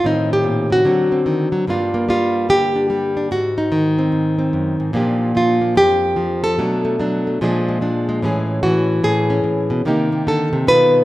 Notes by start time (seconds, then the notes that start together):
0.04 A2 D#3 C4 D#4
0.33 G4
0.44 A#2
0.70 C3 F#4
0.85 D3 F#3 C4
1.12 C4
1.26 D#3
1.52 F#3
1.67 G2 G3 A#3 D4 F4
1.94 A#3
2.09 G3 F4
2.49 D3 G4
2.76 D4
2.90 G3
3.17 D4
3.31 G#2 F#4
3.58 D#4
3.72 D#3
3.99 C4
4.12 G#2
4.39 C4
4.53 F#2
4.80 G#2
4.93 A#2 F3 A#3 D4 G4
5.35 F3 F4
5.61 A#3
5.76 F2 G4
6.16 F3
6.44 A4
6.58 B2 F#3 A3 D4
6.85 A3
7.00 F#3 D4
7.27 A3
7.41 A#2 F3 G#3 D4 G#4
7.69 G#3
7.81 F3 D4
8.09 G#3
8.22 A2 E3 G#3 C#4 G#4
8.63 E3 F#4
9.04 A2 G#4
9.30 C#4
9.44 A2
9.70 B2
9.85 C3 D#3 A#3 D#4 G4
10.12 A#3
10.27 D3 A4
10.53 C3
10.67 B2 D#3 B3 F4 B4